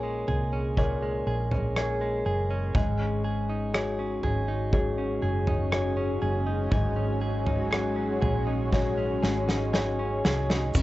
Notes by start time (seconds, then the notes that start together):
Already playing: A#1 A#2 A#3 C#4 G#4 A#4 C#5
0.03 G#3
0.28 C2 G#4, floor tom
0.53 C#4
0.77 A#2 G#4 A#4 C#5, kick, floor tom
1.02 G#3
1.27 A#1 G#4
1.52 C#4, floor tom
1.76 G#4 A#4 C#5, cross-stick
2.01 G#3
2.26 F#1 G#4
2.51 C#4
2.74 G#1 G#2 F#3 G#3 C#4 G#4, kick, floor tom
3.00 C#4
3.24 G#4
3.50 D#4
3.74 F#4 G#4 C#5, cross-stick
3.99 C#4
4.23 G#1 G#4, floor tom
4.48 D#4
4.72 G#2 F#4 G#4 C#5, kick, floor tom
4.98 C#4
5.22 F#1 G#4
5.47 D#4, floor tom
5.72 F#4 G#4 C#5, cross-stick
5.97 C#4
6.22 F#1 G#4
6.47 D#4
6.71 G#1 G#2 G#3 G#4, kick, floor tom
6.96 C#4
7.21 G#4
7.46 D#4, floor tom
7.71 F#4 G#4 C#5, cross-stick
7.96 C#4
8.22 A#1 G#4, floor tom
8.47 D#4
8.72 G#2 F#4 G#4 C#5, kick, snare
8.98 C#4
9.23 G#1 G#4, snare
9.48 D#4, snare
9.73 F#4 G#4 C#5, snare
9.99 C#4
10.25 C2 G#4, snare
10.50 D#4, snare
10.75 C#2 C#3 C#4, kick, floor tom, crash, shaker